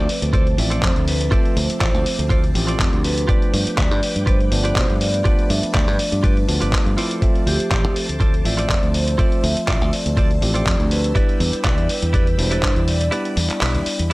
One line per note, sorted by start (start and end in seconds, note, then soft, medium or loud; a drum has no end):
0.00 0.55 F3 medium
0.00 0.55 A3 medium
0.00 0.56 C4 medium
0.00 3.25 C4 medium
0.00 0.56 E5 medium
0.00 3.25 A5 medium
0.00 8.90 D6 medium
0.09 0.32 B4 medium
0.09 open hi-hat medium
0.22 0.54 D2 medium
0.22 closed hi-hat medium
0.33 0.46 F4 medium
0.33 0.47 A4 medium
0.33 0.57 C5 medium
0.33 0.47 C5 medium
0.33 0.47 D5 loud
0.33 kick loud
0.33 closed hi-hat medium
0.47 closed hi-hat soft
0.57 0.78 A1 loud
0.57 1.29 F3 loud
0.57 1.29 A3 medium
0.57 1.29 C4 medium
0.57 0.81 D5 loud
0.57 1.30 E5 loud
0.57 muted clean electric guitar stroke soft
0.57 open hi-hat loud
0.70 1.01 F4 medium
0.70 1.01 A4 medium
0.70 1.02 C5 medium
0.70 1.02 D5 medium
0.70 closed hi-hat medium
0.83 0.93 F2 loud
0.83 1.08 C5 medium
0.83 kick loud
0.83 clap loud
0.83 closed hi-hat medium
0.96 1.28 D2 loud
0.96 closed hi-hat soft
1.08 1.53 B4 loud
1.08 open hi-hat loud
1.21 closed hi-hat medium
1.31 2.52 F3 loud
1.31 2.52 A3 medium
1.31 2.52 C4 medium
1.31 1.56 F4 loud
1.31 1.56 A4 loud
1.31 1.57 C5 loud
1.31 1.57 D5 loud
1.31 2.53 E5 loud
1.31 kick loud
1.31 closed hi-hat medium
1.45 closed hi-hat soft
1.56 1.67 D2 loud
1.56 1.80 C5 medium
1.56 open hi-hat loud
1.70 muted fingered electric bass stroke soft
1.70 closed hi-hat medium
1.80 1.94 A1 loud
1.80 2.05 F4 medium
1.80 2.06 A4 medium
1.80 2.32 C5 loud
1.80 2.06 C5 medium
1.80 2.06 D5 loud
1.80 kick loud
1.80 clap loud
1.80 closed hi-hat medium
1.94 2.03 D2 medium
1.94 closed hi-hat soft
2.06 muted fingered electric bass stroke soft
2.06 open hi-hat loud
2.19 2.51 D2 medium
2.19 closed hi-hat medium
2.29 2.43 F4 medium
2.29 2.43 A4 medium
2.29 3.06 A4 medium
2.29 2.44 C5 medium
2.29 2.44 D5 loud
2.29 kick loud
2.29 closed hi-hat medium
2.44 closed hi-hat soft
2.54 2.75 A1 loud
2.54 2.65 F3 medium
2.54 2.65 A3 medium
2.54 2.65 C4 medium
2.54 2.65 G4 medium
2.54 muted clean electric guitar stroke soft
2.54 open hi-hat loud
2.67 3.26 F3 medium
2.67 3.26 A3 medium
2.67 3.26 C4 medium
2.67 2.98 F4 medium
2.67 3.27 G4 medium
2.67 2.98 A4 medium
2.67 2.98 C5 medium
2.67 2.99 D5 loud
2.67 closed hi-hat medium
2.80 2.90 F2 loud
2.80 kick loud
2.80 clap loud
2.80 closed hi-hat medium
2.93 3.25 D2 loud
2.93 closed hi-hat soft
3.04 3.80 B4 loud
3.04 open hi-hat medium
3.18 closed hi-hat medium
3.28 4.49 F3 medium
3.28 4.49 A3 medium
3.28 4.49 B3 medium
3.28 4.50 D4 loud
3.28 3.53 F4 loud
3.28 3.53 G4 loud
3.28 3.53 B4 loud
3.28 6.94 B4 medium
3.28 3.54 D5 loud
3.28 5.24 G5 medium
3.28 kick loud
3.28 closed hi-hat soft
3.42 closed hi-hat soft
3.54 3.64 G2 loud
3.54 open hi-hat loud
3.67 muted fingered electric bass stroke soft
3.67 closed hi-hat medium
3.77 3.91 D2 loud
3.77 4.02 F4 medium
3.77 4.02 G4 medium
3.77 4.03 B4 medium
3.77 4.03 D5 loud
3.77 4.03 E5 loud
3.77 kick loud
3.77 clap loud
3.77 closed hi-hat soft
3.91 4.00 G2 loud
3.91 closed hi-hat soft
4.03 4.28 B4 medium
4.03 open hi-hat loud
4.16 4.48 G2 medium
4.16 closed hi-hat medium
4.26 4.40 F4 medium
4.26 4.40 G4 medium
4.26 4.40 B4 medium
4.26 4.38 C5 loud
4.26 4.41 D5 loud
4.26 kick loud
4.26 closed hi-hat medium
4.40 closed hi-hat soft
4.50 4.71 G1 loud
4.50 5.22 F3 loud
4.50 5.23 A3 medium
4.50 5.23 B3 medium
4.50 5.23 D4 loud
4.50 4.75 D5 loud
4.50 muted clean electric guitar stroke soft
4.50 open hi-hat loud
4.64 4.95 F4 medium
4.64 4.95 G4 medium
4.64 4.95 B4 medium
4.64 4.95 D5 loud
4.64 closed hi-hat medium
4.76 4.87 B2 medium
4.76 4.99 C5 loud
4.76 kick loud
4.76 clap loud
4.76 closed hi-hat medium
4.90 5.22 G2 loud
4.90 closed hi-hat soft
5.01 5.51 D5 loud
5.01 open hi-hat loud
5.14 closed hi-hat medium
5.24 6.45 F3 loud
5.24 6.46 A3 medium
5.24 6.46 B3 medium
5.24 6.46 D4 loud
5.24 5.49 F4 loud
5.24 5.50 G4 loud
5.24 5.50 B4 loud
5.24 5.50 D5 loud
5.24 6.96 A5 medium
5.24 kick loud
5.24 closed hi-hat soft
5.39 closed hi-hat soft
5.50 5.60 G2 loud
5.50 5.75 E5 loud
5.50 open hi-hat loud
5.63 muted fingered electric bass stroke soft
5.63 closed hi-hat soft
5.74 5.88 D2 loud
5.74 5.99 F4 medium
5.74 5.99 G4 medium
5.74 5.99 B4 medium
5.74 6.25 D5 loud
5.74 6.00 D5 loud
5.74 kick loud
5.74 clap loud
5.74 closed hi-hat medium
5.88 5.97 G2 medium
5.88 closed hi-hat soft
5.99 muted fingered electric bass stroke soft
5.99 open hi-hat loud
6.12 6.44 G2 medium
6.12 closed hi-hat soft
6.23 6.36 F4 medium
6.23 6.37 G4 medium
6.23 6.37 B4 medium
6.23 6.94 B4 medium
6.23 6.37 D5 medium
6.23 kick loud
6.23 closed hi-hat medium
6.37 closed hi-hat soft
6.48 6.59 D2 medium
6.48 6.94 F3 medium
6.48 6.95 A3 medium
6.48 6.95 B3 medium
6.48 6.95 D4 loud
6.48 muted clean electric guitar stroke soft
6.48 open hi-hat loud
6.61 6.71 G1 medium
6.61 6.91 F4 medium
6.61 6.92 G4 medium
6.61 6.92 B4 medium
6.61 6.92 D5 medium
6.61 closed hi-hat medium
6.73 kick loud
6.73 clap loud
6.73 closed hi-hat medium
6.86 6.95 G2 loud
6.86 closed hi-hat soft
6.97 7.19 F3 medium
6.97 7.19 A3 medium
6.97 7.19 C4 medium
6.97 7.20 E4 loud
6.97 7.57 F4 medium
6.97 7.57 A4 medium
6.97 11.12 C5 medium
6.97 7.57 C5 medium
6.97 7.58 D5 loud
6.97 11.12 A5 medium
6.97 open hi-hat loud
7.11 closed hi-hat medium
7.21 8.42 F3 medium
7.21 8.42 A3 medium
7.21 8.43 C4 medium
7.21 8.43 E5 loud
7.21 kick loud
7.21 closed hi-hat medium
7.36 closed hi-hat soft
7.47 7.57 D2 loud
7.47 7.98 G4 loud
7.47 open hi-hat loud
7.60 muted fingered electric bass stroke soft
7.60 closed hi-hat medium
7.71 7.84 A1 loud
7.71 7.96 F4 medium
7.71 7.96 A4 medium
7.71 7.96 C5 medium
7.71 7.96 D5 loud
7.71 kick loud
7.71 clap loud
7.71 closed hi-hat soft
7.84 7.93 D2 medium
7.84 closed hi-hat soft
7.96 8.20 A4 medium
7.96 open hi-hat medium
8.09 8.41 D2 medium
8.09 closed hi-hat medium
8.20 8.33 F4 medium
8.20 8.34 A4 medium
8.20 8.46 A4 loud
8.20 8.34 C5 medium
8.20 8.34 D5 loud
8.20 kick loud
8.20 closed hi-hat medium
8.34 closed hi-hat soft
8.44 8.65 A1 loud
8.44 9.16 F3 loud
8.44 9.16 A3 medium
8.44 9.16 C4 medium
8.44 8.96 D5 loud
8.44 9.17 E5 loud
8.44 muted clean electric guitar stroke soft
8.44 open hi-hat loud
8.57 8.88 F4 medium
8.57 8.88 A4 medium
8.57 8.89 C5 medium
8.57 8.89 D5 loud
8.57 closed hi-hat medium
8.70 8.80 F2 loud
8.70 kick loud
8.70 clap loud
8.70 closed hi-hat soft
8.83 9.15 D2 loud
8.83 closed hi-hat soft
8.94 9.17 C5 loud
8.94 13.08 E6 medium
8.94 open hi-hat medium
9.08 closed hi-hat medium
9.18 10.39 F3 loud
9.18 10.39 A3 medium
9.18 10.39 C4 medium
9.18 9.43 F4 loud
9.18 9.43 A4 loud
9.18 9.44 C5 loud
9.18 9.44 D5 loud
9.18 10.40 E5 loud
9.18 kick loud
9.18 closed hi-hat medium
9.32 closed hi-hat soft
9.43 9.54 D2 loud
9.43 9.94 E5 loud
9.43 open hi-hat loud
9.57 muted fingered electric bass stroke soft
9.57 closed hi-hat medium
9.67 9.81 A1 loud
9.67 9.92 F4 medium
9.67 9.93 A4 medium
9.67 9.93 C5 medium
9.67 9.93 D5 loud
9.67 kick loud
9.67 clap loud
9.67 closed hi-hat medium
9.81 9.90 D2 medium
9.81 closed hi-hat soft
9.93 10.94 D5 loud
9.93 muted fingered electric bass stroke soft
9.93 open hi-hat medium
10.06 10.38 D2 medium
10.06 closed hi-hat medium
10.17 10.30 F4 medium
10.17 10.30 A4 medium
10.17 10.31 C5 medium
10.17 10.31 D5 loud
10.17 kick loud
10.17 closed hi-hat medium
10.31 closed hi-hat soft
10.41 10.62 A1 loud
10.41 10.52 F3 medium
10.41 10.52 A3 medium
10.41 10.52 C4 medium
10.41 10.52 G4 loud
10.41 muted clean electric guitar stroke soft
10.41 open hi-hat loud
10.54 11.13 F3 medium
10.54 11.13 A3 medium
10.54 11.13 C4 medium
10.54 10.85 F4 medium
10.54 11.13 G4 medium
10.54 10.85 A4 medium
10.54 10.85 C5 medium
10.54 10.86 D5 loud
10.54 closed hi-hat medium
10.66 10.77 F2 loud
10.66 kick loud
10.66 clap loud
10.66 closed hi-hat medium
10.80 11.12 D2 loud
10.80 closed hi-hat soft
10.91 11.61 B4 loud
10.91 open hi-hat medium
11.04 closed hi-hat medium
11.14 12.35 G3 medium
11.14 12.36 B3 medium
11.14 12.36 D4 medium
11.14 11.40 E4 loud
11.14 12.36 E4 loud
11.14 11.40 G4 loud
11.14 11.40 B4 loud
11.14 14.13 D5 medium
11.14 11.41 D5 loud
11.14 14.13 G5 medium
11.14 14.13 B5 medium
11.14 kick loud
11.14 closed hi-hat medium
11.29 closed hi-hat soft
11.40 11.50 E2 loud
11.40 open hi-hat loud
11.53 muted fingered electric bass stroke soft
11.53 closed hi-hat medium
11.64 11.78 B1 loud
11.64 11.89 E4 medium
11.64 11.89 G4 medium
11.64 11.89 B4 medium
11.64 11.90 D5 loud
11.64 kick loud
11.64 clap loud
11.64 closed hi-hat medium
11.78 11.87 E2 medium
11.78 closed hi-hat soft
11.89 12.40 B4 loud
11.89 open hi-hat medium
12.02 12.35 E2 medium
12.02 closed hi-hat medium
12.13 12.27 E4 medium
12.13 12.27 G4 medium
12.13 12.27 B4 medium
12.13 12.27 D5 loud
12.13 kick loud
12.13 closed hi-hat medium
12.27 closed hi-hat soft
12.38 12.58 E1 loud
12.38 13.09 B2 medium
12.38 13.09 G3 medium
12.38 13.10 D4 medium
12.38 13.10 E4 loud
12.38 12.89 C5 loud
12.38 muted clean electric guitar stroke soft
12.38 open hi-hat loud
12.51 12.82 E4 medium
12.51 12.82 G4 medium
12.51 12.82 B4 medium
12.51 12.82 D5 loud
12.51 closed hi-hat medium
12.63 12.73 G2 medium
12.63 kick medium
12.63 clap loud
12.63 closed hi-hat medium
12.76 13.08 E2 loud
12.76 closed hi-hat soft
12.88 14.13 D5 loud
12.88 open hi-hat medium
13.01 closed hi-hat medium
13.11 14.13 G3 loud
13.11 14.13 B3 medium
13.11 14.13 D4 medium
13.11 13.36 E4 loud
13.11 14.13 E4 loud
13.11 13.37 G4 loud
13.11 13.37 B4 loud
13.11 13.37 D5 loud
13.11 14.13 D6 medium
13.11 closed hi-hat medium
13.25 closed hi-hat soft
13.37 13.47 E2 loud
13.37 open hi-hat loud
13.50 muted fingered electric bass stroke soft
13.50 clap soft
13.50 closed hi-hat medium
13.61 13.76 B1 loud
13.61 13.86 E4 medium
13.61 13.86 G4 medium
13.61 13.86 B4 medium
13.61 13.87 E5 loud
13.61 clap loud
13.61 closed hi-hat medium
13.75 13.84 E2 loud
13.75 closed hi-hat soft
13.86 muted fingered electric bass stroke soft
13.86 open hi-hat medium
13.99 14.13 E2 medium
13.99 closed hi-hat medium